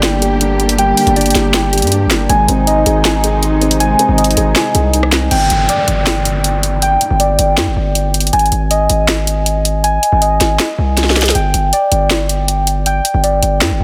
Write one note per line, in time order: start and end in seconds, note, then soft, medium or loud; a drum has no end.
0.00 0.93 G1 loud
0.00 2.26 D3 medium
0.00 0.22 G3 loud
0.00 2.26 G3 medium
0.00 0.41 A#3 medium
0.00 2.26 A#3 medium
0.00 0.39 D4 medium
0.00 0.20 G4 medium
0.00 2.26 G4 medium
0.00 1.15 D5 medium
0.00 0.77 G5 loud
0.00 0.97 G5 loud
0.00 snare loud
0.00 clap medium
0.00 closed hi-hat medium
0.22 1.16 G4 medium
0.22 closed hi-hat medium
0.41 1.15 D4 medium
0.41 closed hi-hat medium
0.60 0.96 A#3 medium
0.60 closed hi-hat soft
0.69 closed hi-hat medium
0.78 1.73 G3 medium
0.78 2.29 G5 loud
0.78 closed hi-hat medium
0.97 1.92 A#3 medium
0.97 closed hi-hat medium
0.97 open hi-hat medium
1.07 1.34 G1 loud
1.07 closed hi-hat soft
1.16 1.90 D4 medium
1.16 2.29 D5 medium
1.16 closed hi-hat medium
1.21 closed hi-hat medium
1.26 closed hi-hat medium
1.30 closed hi-hat medium
1.35 1.84 G1 loud
1.35 1.71 G4 medium
1.35 snare medium
1.35 closed hi-hat medium
1.54 2.29 G5 loud
1.54 snare loud
1.54 clap medium
1.54 closed hi-hat medium
1.73 2.29 G4 medium
1.73 closed hi-hat medium
1.78 closed hi-hat medium
1.82 2.07 G2 loud
1.82 closed hi-hat medium
1.87 closed hi-hat soft
1.92 2.29 D4 medium
1.92 closed hi-hat medium
2.06 2.28 G1 loud
2.10 2.29 A#3 medium
2.10 snare loud
2.10 clap medium
2.10 closed hi-hat medium
2.29 2.48 G#1 loud
2.29 5.28 C3 medium
2.29 5.28 D#3 medium
2.29 3.24 G#3 medium
2.29 5.28 G#3 medium
2.29 5.28 D#4 medium
2.29 3.79 G#5 loud
2.29 closed hi-hat medium
2.48 2.84 G#1 loud
2.48 3.43 C4 medium
2.48 closed hi-hat medium
2.67 3.41 D#4 loud
2.67 4.17 D#5 loud
2.67 closed hi-hat medium
2.86 3.95 G#1 loud
2.86 3.22 G#4 medium
2.86 closed hi-hat medium
3.05 3.99 G#5 loud
3.05 snare loud
3.05 clap medium
3.05 closed hi-hat medium
3.24 4.18 G#4 medium
3.24 closed hi-hat medium
3.43 4.16 D#4 medium
3.43 closed hi-hat medium
3.61 3.98 C4 medium
3.61 closed hi-hat medium
3.71 closed hi-hat medium
3.80 4.75 G#3 medium
3.80 5.31 G#5 loud
3.80 closed hi-hat medium
3.99 4.94 C4 medium
3.99 closed hi-hat medium
4.09 4.36 G#1 loud
4.18 4.92 D#4 medium
4.18 5.31 D#5 medium
4.18 closed hi-hat medium
4.24 closed hi-hat medium
4.31 closed hi-hat medium
4.37 4.55 G#1 loud
4.37 4.73 G#4 medium
4.37 closed hi-hat medium
4.56 5.31 G#5 loud
4.56 snare loud
4.56 clap medium
4.56 closed hi-hat medium
4.75 5.29 C2 loud
4.75 5.31 G#4 medium
4.75 closed hi-hat medium
4.93 5.31 D#4 medium
4.93 closed hi-hat medium
5.03 cross-stick medium
5.12 5.31 C4 medium
5.12 snare loud
5.12 clap medium
5.12 closed hi-hat medium
5.31 5.49 G1 loud
5.31 6.81 G5 loud
5.31 closed hi-hat medium
5.31 crash medium
5.31 downlifter medium
5.50 5.68 G1 loud
5.50 closed hi-hat medium
5.69 7.19 D5 medium
5.69 closed hi-hat medium
5.88 6.97 G1 loud
5.88 closed hi-hat medium
6.07 snare loud
6.07 clap medium
6.07 closed hi-hat medium
6.25 closed hi-hat medium
6.44 closed hi-hat medium
6.63 closed hi-hat medium
6.82 8.33 G5 loud
6.82 closed hi-hat medium
7.01 closed hi-hat medium
7.11 7.38 G1 loud
7.20 8.33 D5 medium
7.20 closed hi-hat medium
7.39 7.59 G1 loud
7.39 closed hi-hat medium
7.58 7.69 G2 loud
7.58 snare loud
7.58 clap medium
7.58 closed hi-hat medium
7.67 7.76 G1 loud
7.76 8.31 G1 loud
7.95 closed hi-hat medium
8.14 closed hi-hat medium
8.20 closed hi-hat medium
8.27 closed hi-hat medium
8.33 8.51 G#1 loud
8.33 9.83 G#5 loud
8.33 closed hi-hat medium
8.39 closed hi-hat medium
8.46 closed hi-hat soft
8.52 8.88 G#1 loud
8.52 closed hi-hat medium
8.71 10.20 D#5 medium
8.71 closed hi-hat medium
8.90 9.99 G#1 loud
8.90 closed hi-hat medium
9.08 snare loud
9.08 clap medium
9.08 closed hi-hat medium
9.27 closed hi-hat medium
9.46 closed hi-hat medium
9.65 closed hi-hat medium
9.84 11.35 G#5 loud
9.84 closed hi-hat medium
10.03 closed hi-hat medium
10.12 10.40 G#1 loud
10.22 11.35 D#5 medium
10.22 closed hi-hat medium
10.41 10.59 G#1 loud
10.41 snare medium
10.41 closed hi-hat medium
10.59 snare loud
10.59 clap medium
10.59 closed hi-hat medium
10.78 11.33 C2 loud
10.97 snare medium
10.97 closed hi-hat medium
11.04 snare medium
11.10 snare medium
11.16 snare medium
11.16 closed hi-hat soft
11.21 snare loud
11.21 closed hi-hat medium
11.26 snare medium
11.26 closed hi-hat medium
11.30 closed hi-hat medium
11.35 11.53 G1 loud
11.35 12.85 G5 loud
11.35 closed hi-hat medium
11.54 11.72 G1 loud
11.54 closed hi-hat medium
11.73 13.22 D5 medium
11.73 closed hi-hat medium
11.92 13.01 G1 loud
11.92 closed hi-hat medium
12.10 snare loud
12.10 clap medium
12.10 closed hi-hat medium
12.29 closed hi-hat medium
12.48 closed hi-hat medium
12.67 closed hi-hat medium
12.86 13.84 G5 loud
12.86 closed hi-hat medium
13.05 closed hi-hat medium
13.14 13.41 G1 loud
13.24 13.84 D5 medium
13.24 closed hi-hat medium
13.43 13.63 G1 loud
13.43 closed hi-hat medium
13.61 13.72 G2 loud
13.61 snare loud
13.61 clap medium
13.61 closed hi-hat medium
13.71 13.80 G1 loud
13.80 13.84 G1 loud